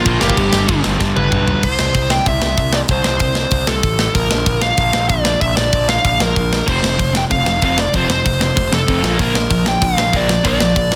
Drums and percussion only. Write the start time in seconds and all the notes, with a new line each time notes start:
0.05 kick, crash
0.21 snare
0.30 kick
0.37 kick, crash
0.53 snare
0.68 kick, crash
0.84 snare
1.00 kick, snare
1.17 high tom
1.32 kick, mid tom
1.48 floor tom
1.63 kick, crash
1.79 snare
1.94 kick, open hi-hat
2.10 snare
2.26 kick, open hi-hat
2.42 snare
2.57 kick, open hi-hat
2.73 snare
2.88 kick, open hi-hat
3.04 snare
3.19 kick, open hi-hat
3.35 snare
3.51 kick, open hi-hat
3.67 snare
3.83 kick, open hi-hat
3.99 snare
4.15 kick, open hi-hat
4.31 snare
4.46 kick, open hi-hat
4.62 snare
4.77 kick, open hi-hat
4.93 snare
5.09 kick, open hi-hat
5.25 snare
5.41 kick, open hi-hat
5.57 snare
5.73 kick, open hi-hat
5.89 snare
6.05 kick, open hi-hat
6.20 snare
6.36 kick, open hi-hat
6.53 snare
6.68 kick, crash
6.84 snare
6.99 kick, open hi-hat
7.15 snare
7.31 kick, open hi-hat
7.46 snare
7.62 kick, open hi-hat
7.78 snare
7.93 kick, open hi-hat
8.10 snare
8.26 kick, open hi-hat
8.41 snare
8.57 kick, open hi-hat
8.73 snare
8.88 kick, open hi-hat
9.04 snare
9.19 kick, open hi-hat
9.35 snare
9.51 kick, open hi-hat
9.66 snare
9.82 kick, open hi-hat
9.98 snare
10.13 kick, open hi-hat
10.29 snare
10.45 kick, open hi-hat
10.60 snare
10.76 kick, open hi-hat
10.92 snare